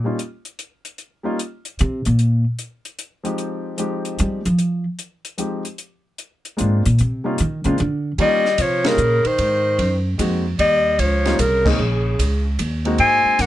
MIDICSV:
0, 0, Header, 1, 7, 480
1, 0, Start_track
1, 0, Tempo, 400000
1, 1187, Time_signature, 3, 2, 24, 8
1, 16153, End_track
2, 0, Start_track
2, 0, Title_t, "Clarinet"
2, 0, Program_c, 0, 71
2, 9856, Note_on_c, 0, 75, 99
2, 10339, Note_on_c, 0, 73, 92
2, 10357, Note_off_c, 0, 75, 0
2, 10649, Note_on_c, 0, 70, 87
2, 10667, Note_off_c, 0, 73, 0
2, 11127, Note_on_c, 0, 72, 92
2, 11145, Note_off_c, 0, 70, 0
2, 12075, Note_off_c, 0, 72, 0
2, 12721, Note_on_c, 0, 75, 108
2, 13194, Note_on_c, 0, 73, 91
2, 13212, Note_off_c, 0, 75, 0
2, 13679, Note_on_c, 0, 70, 89
2, 13697, Note_off_c, 0, 73, 0
2, 14018, Note_on_c, 0, 68, 83
2, 14036, Note_off_c, 0, 70, 0
2, 14962, Note_off_c, 0, 68, 0
2, 15601, Note_on_c, 0, 80, 100
2, 16094, Note_on_c, 0, 78, 93
2, 16112, Note_off_c, 0, 80, 0
2, 16153, Note_off_c, 0, 78, 0
2, 16153, End_track
3, 0, Start_track
3, 0, Title_t, "Grand piano"
3, 0, Program_c, 1, 0
3, 49, Note_on_c, 1, 55, 63
3, 60, Note_on_c, 1, 58, 55
3, 63, Note_on_c, 1, 61, 51
3, 66, Note_on_c, 1, 63, 52
3, 73, Note_on_c, 1, 65, 59
3, 203, Note_off_c, 1, 55, 0
3, 208, Note_off_c, 1, 58, 0
3, 209, Note_off_c, 1, 61, 0
3, 211, Note_off_c, 1, 63, 0
3, 215, Note_off_c, 1, 65, 0
3, 1480, Note_on_c, 1, 55, 66
3, 1492, Note_on_c, 1, 58, 62
3, 1498, Note_on_c, 1, 61, 55
3, 1503, Note_on_c, 1, 63, 61
3, 1508, Note_on_c, 1, 65, 70
3, 1638, Note_off_c, 1, 55, 0
3, 1644, Note_off_c, 1, 58, 0
3, 1647, Note_off_c, 1, 61, 0
3, 1650, Note_off_c, 1, 63, 0
3, 1652, Note_off_c, 1, 65, 0
3, 3882, Note_on_c, 1, 53, 60
3, 3894, Note_on_c, 1, 56, 56
3, 3894, Note_on_c, 1, 60, 52
3, 3902, Note_on_c, 1, 63, 55
3, 3907, Note_on_c, 1, 67, 65
3, 4503, Note_off_c, 1, 53, 0
3, 4509, Note_off_c, 1, 56, 0
3, 4509, Note_off_c, 1, 60, 0
3, 4513, Note_off_c, 1, 63, 0
3, 4516, Note_off_c, 1, 67, 0
3, 4528, Note_on_c, 1, 53, 53
3, 4534, Note_on_c, 1, 56, 55
3, 4538, Note_on_c, 1, 60, 51
3, 4547, Note_on_c, 1, 63, 52
3, 4549, Note_on_c, 1, 67, 68
3, 5272, Note_off_c, 1, 53, 0
3, 5275, Note_off_c, 1, 56, 0
3, 5277, Note_off_c, 1, 60, 0
3, 5281, Note_off_c, 1, 63, 0
3, 5282, Note_off_c, 1, 67, 0
3, 6451, Note_on_c, 1, 53, 52
3, 6454, Note_on_c, 1, 56, 48
3, 6464, Note_on_c, 1, 60, 53
3, 6469, Note_on_c, 1, 63, 46
3, 6470, Note_on_c, 1, 67, 57
3, 6745, Note_off_c, 1, 53, 0
3, 6746, Note_off_c, 1, 56, 0
3, 6751, Note_off_c, 1, 60, 0
3, 6753, Note_off_c, 1, 63, 0
3, 6754, Note_off_c, 1, 67, 0
3, 7881, Note_on_c, 1, 56, 60
3, 7882, Note_on_c, 1, 58, 57
3, 7894, Note_on_c, 1, 60, 52
3, 7900, Note_on_c, 1, 62, 53
3, 7904, Note_on_c, 1, 65, 63
3, 8179, Note_off_c, 1, 56, 0
3, 8180, Note_off_c, 1, 58, 0
3, 8185, Note_off_c, 1, 60, 0
3, 8189, Note_off_c, 1, 62, 0
3, 8190, Note_off_c, 1, 65, 0
3, 8689, Note_on_c, 1, 55, 66
3, 8690, Note_on_c, 1, 58, 58
3, 8703, Note_on_c, 1, 63, 61
3, 8705, Note_on_c, 1, 61, 58
3, 8711, Note_on_c, 1, 65, 69
3, 8842, Note_off_c, 1, 55, 0
3, 8842, Note_off_c, 1, 58, 0
3, 8849, Note_off_c, 1, 63, 0
3, 8850, Note_off_c, 1, 61, 0
3, 8853, Note_off_c, 1, 65, 0
3, 9171, Note_on_c, 1, 56, 62
3, 9176, Note_on_c, 1, 58, 59
3, 9183, Note_on_c, 1, 60, 57
3, 9191, Note_on_c, 1, 62, 57
3, 9193, Note_on_c, 1, 65, 72
3, 9323, Note_off_c, 1, 56, 0
3, 9325, Note_off_c, 1, 58, 0
3, 9328, Note_off_c, 1, 60, 0
3, 9333, Note_off_c, 1, 62, 0
3, 9334, Note_off_c, 1, 65, 0
3, 9820, Note_on_c, 1, 55, 65
3, 9829, Note_on_c, 1, 58, 59
3, 9831, Note_on_c, 1, 61, 60
3, 9839, Note_on_c, 1, 63, 59
3, 9840, Note_on_c, 1, 65, 69
3, 10108, Note_off_c, 1, 55, 0
3, 10113, Note_off_c, 1, 58, 0
3, 10114, Note_off_c, 1, 61, 0
3, 10118, Note_off_c, 1, 63, 0
3, 10119, Note_off_c, 1, 65, 0
3, 10606, Note_on_c, 1, 55, 73
3, 10610, Note_on_c, 1, 58, 59
3, 10613, Note_on_c, 1, 61, 65
3, 10620, Note_on_c, 1, 63, 64
3, 10623, Note_on_c, 1, 65, 74
3, 10760, Note_off_c, 1, 55, 0
3, 10762, Note_off_c, 1, 58, 0
3, 10764, Note_off_c, 1, 61, 0
3, 10767, Note_off_c, 1, 63, 0
3, 10769, Note_off_c, 1, 65, 0
3, 12216, Note_on_c, 1, 56, 66
3, 12226, Note_on_c, 1, 58, 55
3, 12230, Note_on_c, 1, 63, 54
3, 12234, Note_on_c, 1, 60, 57
3, 12243, Note_on_c, 1, 66, 70
3, 12507, Note_off_c, 1, 56, 0
3, 12512, Note_off_c, 1, 58, 0
3, 12514, Note_off_c, 1, 63, 0
3, 12516, Note_off_c, 1, 60, 0
3, 12521, Note_off_c, 1, 66, 0
3, 13504, Note_on_c, 1, 55, 71
3, 13509, Note_on_c, 1, 58, 66
3, 13511, Note_on_c, 1, 61, 61
3, 13514, Note_on_c, 1, 63, 64
3, 13524, Note_on_c, 1, 65, 75
3, 13650, Note_off_c, 1, 55, 0
3, 13653, Note_off_c, 1, 58, 0
3, 13653, Note_off_c, 1, 61, 0
3, 13655, Note_off_c, 1, 63, 0
3, 13660, Note_off_c, 1, 65, 0
3, 13978, Note_on_c, 1, 56, 76
3, 13981, Note_on_c, 1, 58, 70
3, 13982, Note_on_c, 1, 60, 70
3, 13994, Note_on_c, 1, 61, 66
3, 13996, Note_on_c, 1, 63, 83
3, 14127, Note_off_c, 1, 56, 0
3, 14128, Note_off_c, 1, 58, 0
3, 14129, Note_off_c, 1, 60, 0
3, 14135, Note_off_c, 1, 61, 0
3, 14136, Note_off_c, 1, 63, 0
3, 15420, Note_on_c, 1, 56, 70
3, 15431, Note_on_c, 1, 58, 64
3, 15431, Note_on_c, 1, 60, 67
3, 15438, Note_on_c, 1, 63, 66
3, 15444, Note_on_c, 1, 66, 74
3, 16032, Note_off_c, 1, 56, 0
3, 16038, Note_off_c, 1, 58, 0
3, 16038, Note_off_c, 1, 60, 0
3, 16041, Note_off_c, 1, 63, 0
3, 16044, Note_off_c, 1, 66, 0
3, 16153, End_track
4, 0, Start_track
4, 0, Title_t, "Tenor saxophone"
4, 0, Program_c, 2, 66
4, 9847, Note_on_c, 2, 55, 83
4, 10309, Note_on_c, 2, 53, 74
4, 10327, Note_off_c, 2, 55, 0
4, 10631, Note_on_c, 2, 49, 70
4, 10649, Note_off_c, 2, 53, 0
4, 11106, Note_on_c, 2, 51, 70
4, 11124, Note_off_c, 2, 49, 0
4, 12065, Note_off_c, 2, 51, 0
4, 12707, Note_on_c, 2, 55, 81
4, 13198, Note_on_c, 2, 53, 79
4, 13216, Note_off_c, 2, 55, 0
4, 13668, Note_on_c, 2, 49, 69
4, 13686, Note_off_c, 2, 53, 0
4, 13987, Note_off_c, 2, 49, 0
4, 13987, Note_on_c, 2, 49, 65
4, 14946, Note_off_c, 2, 49, 0
4, 15597, Note_on_c, 2, 60, 83
4, 16079, Note_on_c, 2, 58, 77
4, 16097, Note_off_c, 2, 60, 0
4, 16153, Note_off_c, 2, 58, 0
4, 16153, End_track
5, 0, Start_track
5, 0, Title_t, "Upright bass"
5, 0, Program_c, 3, 32
5, 2167, Note_on_c, 3, 48, 106
5, 2466, Note_off_c, 3, 48, 0
5, 2475, Note_on_c, 3, 46, 95
5, 2917, Note_off_c, 3, 46, 0
5, 5036, Note_on_c, 3, 55, 104
5, 5340, Note_off_c, 3, 55, 0
5, 5349, Note_on_c, 3, 53, 90
5, 5793, Note_off_c, 3, 53, 0
5, 7927, Note_on_c, 3, 44, 80
5, 8225, Note_off_c, 3, 44, 0
5, 8232, Note_on_c, 3, 46, 91
5, 8385, Note_off_c, 3, 46, 0
5, 8406, Note_on_c, 3, 48, 90
5, 8842, Note_off_c, 3, 48, 0
5, 8885, Note_on_c, 3, 51, 94
5, 9177, Note_off_c, 3, 51, 0
5, 9184, Note_on_c, 3, 49, 94
5, 9341, Note_off_c, 3, 49, 0
5, 9360, Note_on_c, 3, 50, 97
5, 9724, Note_off_c, 3, 50, 0
5, 9819, Note_on_c, 3, 51, 73
5, 10287, Note_off_c, 3, 51, 0
5, 10303, Note_on_c, 3, 48, 86
5, 10770, Note_off_c, 3, 48, 0
5, 10776, Note_on_c, 3, 46, 93
5, 11076, Note_off_c, 3, 46, 0
5, 11265, Note_on_c, 3, 44, 81
5, 11731, Note_off_c, 3, 44, 0
5, 11744, Note_on_c, 3, 42, 92
5, 12211, Note_off_c, 3, 42, 0
5, 12230, Note_on_c, 3, 41, 92
5, 12694, Note_off_c, 3, 41, 0
5, 12709, Note_on_c, 3, 39, 86
5, 13173, Note_off_c, 3, 39, 0
5, 13189, Note_on_c, 3, 37, 93
5, 13653, Note_off_c, 3, 37, 0
5, 13668, Note_on_c, 3, 36, 92
5, 14133, Note_off_c, 3, 36, 0
5, 14142, Note_on_c, 3, 34, 81
5, 14610, Note_off_c, 3, 34, 0
5, 14629, Note_on_c, 3, 37, 85
5, 15093, Note_off_c, 3, 37, 0
5, 15111, Note_on_c, 3, 39, 91
5, 15574, Note_off_c, 3, 39, 0
5, 15589, Note_on_c, 3, 44, 82
5, 15884, Note_off_c, 3, 44, 0
5, 16071, Note_on_c, 3, 42, 86
5, 16153, Note_off_c, 3, 42, 0
5, 16153, End_track
6, 0, Start_track
6, 0, Title_t, "Muted upright bass strokes"
6, 11103, Note_on_c, 9, 29, 37
6, 11223, Note_off_c, 9, 29, 0
6, 15902, Note_on_c, 9, 29, 40
6, 16022, Note_off_c, 9, 29, 0
6, 16153, End_track
7, 0, Start_track
7, 0, Title_t, "Drums"
7, 229, Note_on_c, 9, 42, 50
7, 349, Note_off_c, 9, 42, 0
7, 541, Note_on_c, 9, 42, 41
7, 661, Note_off_c, 9, 42, 0
7, 707, Note_on_c, 9, 42, 51
7, 827, Note_off_c, 9, 42, 0
7, 1019, Note_on_c, 9, 42, 44
7, 1139, Note_off_c, 9, 42, 0
7, 1179, Note_on_c, 9, 42, 38
7, 1299, Note_off_c, 9, 42, 0
7, 1673, Note_on_c, 9, 42, 52
7, 1793, Note_off_c, 9, 42, 0
7, 1982, Note_on_c, 9, 42, 47
7, 2102, Note_off_c, 9, 42, 0
7, 2148, Note_on_c, 9, 42, 52
7, 2268, Note_off_c, 9, 42, 0
7, 2463, Note_on_c, 9, 42, 45
7, 2583, Note_off_c, 9, 42, 0
7, 2626, Note_on_c, 9, 42, 42
7, 2746, Note_off_c, 9, 42, 0
7, 3103, Note_on_c, 9, 42, 49
7, 3223, Note_off_c, 9, 42, 0
7, 3422, Note_on_c, 9, 42, 41
7, 3542, Note_off_c, 9, 42, 0
7, 3583, Note_on_c, 9, 42, 55
7, 3703, Note_off_c, 9, 42, 0
7, 3899, Note_on_c, 9, 42, 43
7, 4019, Note_off_c, 9, 42, 0
7, 4058, Note_on_c, 9, 42, 41
7, 4178, Note_off_c, 9, 42, 0
7, 4535, Note_on_c, 9, 42, 52
7, 4655, Note_off_c, 9, 42, 0
7, 4860, Note_on_c, 9, 42, 45
7, 4980, Note_off_c, 9, 42, 0
7, 5023, Note_on_c, 9, 42, 52
7, 5143, Note_off_c, 9, 42, 0
7, 5346, Note_on_c, 9, 42, 46
7, 5466, Note_off_c, 9, 42, 0
7, 5503, Note_on_c, 9, 42, 43
7, 5623, Note_off_c, 9, 42, 0
7, 5984, Note_on_c, 9, 42, 50
7, 6104, Note_off_c, 9, 42, 0
7, 6297, Note_on_c, 9, 42, 46
7, 6417, Note_off_c, 9, 42, 0
7, 6458, Note_on_c, 9, 42, 54
7, 6578, Note_off_c, 9, 42, 0
7, 6779, Note_on_c, 9, 42, 43
7, 6899, Note_off_c, 9, 42, 0
7, 6939, Note_on_c, 9, 42, 41
7, 7059, Note_off_c, 9, 42, 0
7, 7421, Note_on_c, 9, 42, 51
7, 7541, Note_off_c, 9, 42, 0
7, 7741, Note_on_c, 9, 42, 44
7, 7861, Note_off_c, 9, 42, 0
7, 7902, Note_on_c, 9, 42, 56
7, 8022, Note_off_c, 9, 42, 0
7, 8226, Note_on_c, 9, 42, 48
7, 8346, Note_off_c, 9, 42, 0
7, 8383, Note_on_c, 9, 42, 43
7, 8503, Note_off_c, 9, 42, 0
7, 8857, Note_on_c, 9, 42, 53
7, 8977, Note_off_c, 9, 42, 0
7, 9171, Note_on_c, 9, 42, 42
7, 9291, Note_off_c, 9, 42, 0
7, 9336, Note_on_c, 9, 42, 44
7, 9456, Note_off_c, 9, 42, 0
7, 9820, Note_on_c, 9, 51, 54
7, 9823, Note_on_c, 9, 36, 21
7, 9940, Note_off_c, 9, 51, 0
7, 9943, Note_off_c, 9, 36, 0
7, 10142, Note_on_c, 9, 38, 33
7, 10262, Note_off_c, 9, 38, 0
7, 10295, Note_on_c, 9, 44, 51
7, 10295, Note_on_c, 9, 51, 69
7, 10302, Note_on_c, 9, 36, 25
7, 10415, Note_off_c, 9, 44, 0
7, 10415, Note_off_c, 9, 51, 0
7, 10422, Note_off_c, 9, 36, 0
7, 10613, Note_on_c, 9, 51, 61
7, 10619, Note_on_c, 9, 38, 76
7, 10733, Note_off_c, 9, 51, 0
7, 10739, Note_off_c, 9, 38, 0
7, 10775, Note_on_c, 9, 44, 60
7, 10895, Note_off_c, 9, 44, 0
7, 11095, Note_on_c, 9, 51, 43
7, 11215, Note_off_c, 9, 51, 0
7, 11261, Note_on_c, 9, 51, 57
7, 11267, Note_on_c, 9, 36, 20
7, 11381, Note_off_c, 9, 51, 0
7, 11387, Note_off_c, 9, 36, 0
7, 11745, Note_on_c, 9, 51, 57
7, 11747, Note_on_c, 9, 36, 21
7, 11865, Note_off_c, 9, 51, 0
7, 11867, Note_off_c, 9, 36, 0
7, 12228, Note_on_c, 9, 36, 23
7, 12228, Note_on_c, 9, 44, 59
7, 12228, Note_on_c, 9, 51, 68
7, 12348, Note_off_c, 9, 36, 0
7, 12348, Note_off_c, 9, 44, 0
7, 12348, Note_off_c, 9, 51, 0
7, 12707, Note_on_c, 9, 51, 63
7, 12708, Note_on_c, 9, 36, 21
7, 12827, Note_off_c, 9, 51, 0
7, 12828, Note_off_c, 9, 36, 0
7, 13186, Note_on_c, 9, 44, 48
7, 13186, Note_on_c, 9, 51, 62
7, 13188, Note_on_c, 9, 36, 25
7, 13306, Note_off_c, 9, 44, 0
7, 13306, Note_off_c, 9, 51, 0
7, 13308, Note_off_c, 9, 36, 0
7, 13505, Note_on_c, 9, 51, 43
7, 13511, Note_on_c, 9, 38, 42
7, 13625, Note_off_c, 9, 51, 0
7, 13631, Note_off_c, 9, 38, 0
7, 13667, Note_on_c, 9, 44, 51
7, 13667, Note_on_c, 9, 51, 70
7, 13671, Note_on_c, 9, 36, 18
7, 13787, Note_off_c, 9, 44, 0
7, 13787, Note_off_c, 9, 51, 0
7, 13791, Note_off_c, 9, 36, 0
7, 13989, Note_on_c, 9, 36, 85
7, 13994, Note_on_c, 9, 49, 76
7, 14109, Note_off_c, 9, 36, 0
7, 14114, Note_off_c, 9, 49, 0
7, 14632, Note_on_c, 9, 36, 18
7, 14633, Note_on_c, 9, 44, 61
7, 14633, Note_on_c, 9, 51, 71
7, 14752, Note_off_c, 9, 36, 0
7, 14753, Note_off_c, 9, 44, 0
7, 14753, Note_off_c, 9, 51, 0
7, 15107, Note_on_c, 9, 44, 55
7, 15107, Note_on_c, 9, 51, 66
7, 15112, Note_on_c, 9, 36, 22
7, 15227, Note_off_c, 9, 44, 0
7, 15227, Note_off_c, 9, 51, 0
7, 15232, Note_off_c, 9, 36, 0
7, 15421, Note_on_c, 9, 51, 41
7, 15541, Note_off_c, 9, 51, 0
7, 15579, Note_on_c, 9, 51, 56
7, 15589, Note_on_c, 9, 36, 18
7, 15699, Note_off_c, 9, 51, 0
7, 15709, Note_off_c, 9, 36, 0
7, 16066, Note_on_c, 9, 44, 53
7, 16066, Note_on_c, 9, 51, 69
7, 16070, Note_on_c, 9, 36, 24
7, 16072, Note_on_c, 9, 38, 36
7, 16153, Note_off_c, 9, 36, 0
7, 16153, Note_off_c, 9, 38, 0
7, 16153, Note_off_c, 9, 44, 0
7, 16153, Note_off_c, 9, 51, 0
7, 16153, End_track
0, 0, End_of_file